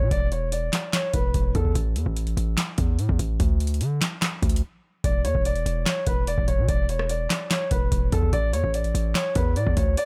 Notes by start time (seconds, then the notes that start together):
0.01 B2
0.11 E1 D5, kick, closed hi-hat
0.32 C#5, closed hi-hat
0.52 D5, closed hi-hat
0.73 snare, clap, closed hi-hat
0.93 C#5, snare, clap, closed hi-hat
1.13 E1 B4, kick, closed hi-hat
1.34 E1, kick, closed hi-hat
1.55 E2 A4, kick, closed hi-hat
1.65 kick
1.75 A1, kick, closed hi-hat
1.96 E2, closed hi-hat
2.06 A1, kick
2.17 closed hi-hat
2.27 closed hi-hat
2.37 A1, closed hi-hat
2.58 snare, clap, closed hi-hat
2.78 E2, kick, closed hi-hat
2.99 A2, closed hi-hat
3.09 E2, kick
3.19 A1, kick, closed hi-hat
3.40 D2, kick, closed hi-hat
3.60 closed hi-hat
3.67 closed hi-hat
3.74 closed hi-hat
3.81 D3, closed hi-hat
4.01 snare, clap, closed hi-hat
4.22 snare, clap, closed hi-hat
4.42 D2, kick, closed hi-hat
4.49 closed hi-hat
4.56 closed hi-hat
5.04 E1 D5, kick, closed hi-hat
5.25 E2 C#5, closed hi-hat
5.35 E1, kick
5.45 D5, closed hi-hat
5.56 closed hi-hat
5.66 E1, closed hi-hat
5.86 C#5, snare, clap, closed hi-hat
6.07 E1 B4, kick, closed hi-hat
6.27 D5, closed hi-hat
6.38 E1, kick
6.48 C#5, kick, closed hi-hat
6.58 B2
6.68 E1 D5, kick, closed hi-hat
6.89 C#5, closed hi-hat
6.99 cross-stick
7.09 D5, closed hi-hat
7.30 snare, clap, closed hi-hat
7.51 C#5, snare, clap, closed hi-hat
7.71 E1 B4, kick, closed hi-hat
7.92 E1, kick, closed hi-hat
8.12 E2 A4, kick, closed hi-hat
8.23 kick
8.33 A1 D5, kick, closed hi-hat
8.53 E2 C#5, closed hi-hat
8.64 A1, kick
8.74 D5, closed hi-hat
8.84 closed hi-hat
8.95 A1, closed hi-hat
9.15 C#5, snare, clap, closed hi-hat
9.35 E2 B4, kick, closed hi-hat
9.56 A2 D5, closed hi-hat
9.67 E2, kick
9.77 D2 C#5, kick, closed hi-hat
9.97 D5, closed hi-hat